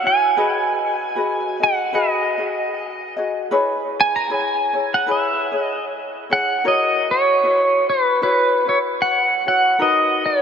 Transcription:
0.03 ukulele E4 F#4 C#5, pedal steel guitar G#5
0.37 ukulele F#4 G#4 B4 D#5
1.15 ukulele F#4 G#4 B4 D#5
1.60 ukulele F#4 G#4 D#5, pedal steel guitar F#5
1.93 ukulele F#4 G#4 B4 D#5, pedal steel guitar D#5
2.38 ukulele F#4 G#4 D#5
3.17 ukulele F#4 G#4 D#5
3.51 ukulele E4 G#4 B4 C#5
4.01 pedal steel guitar G#5
4.16 pedal steel guitar A#5
4.29 ukulele E4 G#4 B4 C#5
4.34 pedal steel guitar G#5
4.73 ukulele E4 G#4 C#5
4.94 pedal steel guitar F#5
5.07 ukulele E4 G#4 B4 C#5
5.11 pedal steel guitar E5
5.52 ukulele E4 G#4 C#5
5.61 pedal steel guitar D#5
6.30 ukulele E4 G#4 C#5, pedal steel guitar F#5
6.64 ukulele E4 F#4 A#4 C#5, pedal steel guitar D#5
7.11 pedal steel guitar C#5
7.43 ukulele E4 F#4 C#5
7.90 pedal steel guitar B4
8.22 ukulele E4 F#4 C#5, pedal steel guitar B4
8.66 ukulele E4 F#4 C#5, pedal steel guitar C#5
9.02 pedal steel guitar F#5
9.46 ukulele E4 F#4 C#5, pedal steel guitar F#5
9.79 ukulele D#4 F#4 A#4 B4, pedal steel guitar D#5
10.26 pedal steel guitar C#5

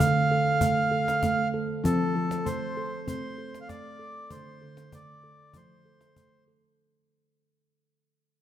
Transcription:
Already playing: steel tongue drum D3, accordion F5
0.00 steel tongue drum A3, cajon bass
0.31 steel tongue drum A4
0.61 steel tongue drum A3, cajon bass
0.92 steel tongue drum A4
1.08 cajon slap
1.23 steel tongue drum A3, cajon bass, cajon slap
1.54 steel tongue drum A4
1.84 steel tongue drum F3 C4, accordion A4, cajon bass
2.15 steel tongue drum F3 A4
2.31 cajon slap
2.45 steel tongue drum A3, accordion C5, cajon bass
2.77 steel tongue drum A4
3.07 steel tongue drum A3 C4, accordion C5, cajon bass
3.38 steel tongue drum A4
3.54 cajon slap
3.61 accordion F5
3.69 steel tongue drum A3, accordion D5, cajon bass, cajon slap
3.99 steel tongue drum A4
4.30 steel tongue drum D3 A3, accordion C5, cajon bass
4.62 steel tongue drum D3 A4
4.77 cajon slap
4.92 steel tongue drum A3, accordion D5, cajon bass
5.09 cajon slap
5.24 steel tongue drum A4
5.53 steel tongue drum F3 A3, accordion C5, cajon bass
5.70 cajon slap
5.85 steel tongue drum A4
6.01 cajon slap
6.16 steel tongue drum A3, cajon bass
6.48 steel tongue drum A4

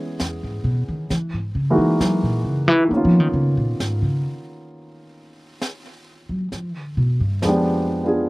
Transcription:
Already playing: grand piano E3 G#3 B3 C#4 G#4
0.20 upright bass E2, snare
0.43 upright bass G#2
0.64 upright bass B2
0.88 upright bass D#3
1.10 upright bass E3, brush sweep, snare
1.34 upright bass G#2
1.55 upright bass C#3
1.70 grand piano E3 G#3 A#3 D#4 F#4
2.01 upright bass F#3, snare
2.23 upright bass A#2
2.44 upright bass C#3
2.68 upright bass E3
2.85 grand piano D#3 A#3
2.90 upright bass D#3, grand piano B3 C#4, brush sweep
2.97 grand piano F4
3.05 upright bass F3
3.20 upright bass D#3
3.33 upright bass C#3
3.57 upright bass A#2
3.80 upright bass G#2, snare
4.02 upright bass C#3
4.70 brush sweep
5.62 snare
6.29 upright bass F#3
6.52 upright bass F3, brush sweep, snare
6.76 upright bass D3
6.97 upright bass B2
7.20 upright bass G2
7.42 upright bass F2, grand piano F3 G#3 B3, snare
7.47 grand piano D4 G4
8.04 grand piano B3 D4 F4 G#4

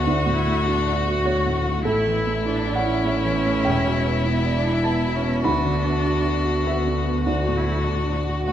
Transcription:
Already playing: double bass D2, violin F#4, string section E5 F#5
0.04 grand piano D2 D5, string section A3, cello F#4
0.26 grand piano A2
0.35 cello E4
0.47 grand piano A3
0.65 cello D4, grand piano F#4
0.86 grand piano D5
0.94 cello F#4
1.08 grand piano F#4
1.25 grand piano A3 C#5
1.46 grand piano A2
1.67 grand piano A3
1.85 double bass A1, grand piano A2 A4, cello E4, string section E4 E5, violin E4
2.07 grand piano E3
2.27 grand piano A3
2.46 cello D4, grand piano E4
2.66 grand piano D5
2.75 cello C#4, grand piano F#5
2.86 grand piano E4
3.04 grand piano A3 E5
3.25 grand piano E3
3.46 grand piano A3
3.64 double bass E1, grand piano E2 G5, string section B3
3.86 grand piano B2
4.06 grand piano B3
4.25 cello B3, grand piano E4
4.46 grand piano D5
4.57 cello D4
4.67 grand piano E4
4.84 grand piano B3 A5, cello E4
5.05 grand piano B2
5.16 cello C#4
5.25 grand piano B3
5.43 double bass D2, grand piano D2 B5, cello D4, string section F#4, violin F#4
5.66 grand piano D3
5.85 grand piano B3
6.07 grand piano F#4
6.26 grand piano D5
6.45 grand piano F#4
6.64 cello B3, grand piano B3 E5
6.87 grand piano D3
7.07 grand piano B3
7.25 grand piano D2 D5, string section A3 D5, violin F#4, cello F#4
7.48 grand piano A2
7.57 cello E4
7.67 grand piano A3
7.85 cello D4, grand piano F#4
8.09 grand piano D5
8.16 cello F#4
8.28 grand piano F#4
8.47 grand piano A3 F#5, violin F#4

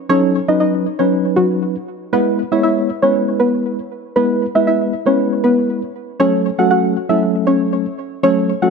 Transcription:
0.09 tine electric piano F#3 C#4 D#4 A4, synth pluck C#4 C#5
0.48 tine electric piano F#3 C#4 D#4 B4, synth pluck D#4 D#5
0.60 synth pluck D#4 D#5
0.99 tine electric piano F#3 C#4 D#4 B4, synth pluck C#4 C#5
1.36 synth pluck F#3 F#4
2.13 tine electric piano G#3 B3 E4 B4, synth pluck B3 B4
2.52 tine electric piano G#3 B3 E4 C#5, synth pluck E4 E5
2.63 synth pluck E4 E5
3.02 tine electric piano G#3 B3 E4 B4, synth pluck C#4 C#5
3.40 synth pluck B3 B4
4.16 tine electric piano G#3 B3 E4 B4, synth pluck B3 B4
4.55 tine electric piano G#3 B3 E4 B4, synth pluck E4 E5
4.67 synth pluck E4 E5
5.06 tine electric piano G#3 B3 E4 B4, synth pluck C#4 C#5
5.44 synth pluck B3 B4
6.20 tine electric piano F#3 A3 C#4 A4, synth pluck C#4 C#5
6.58 tine electric piano F#3 A3 C#4 A4, synth pluck F#4 F#5
6.71 synth pluck F#4 F#5
7.09 tine electric piano F#3 A3 C#4 A4, synth pluck E4 E5
7.47 synth pluck C#4 C#5
8.23 tine electric piano F#3 A3 C#4 A4, synth pluck C#4 C#5
8.62 tine electric piano F#3 A3 C#4 A4, synth pluck F#4 F#5

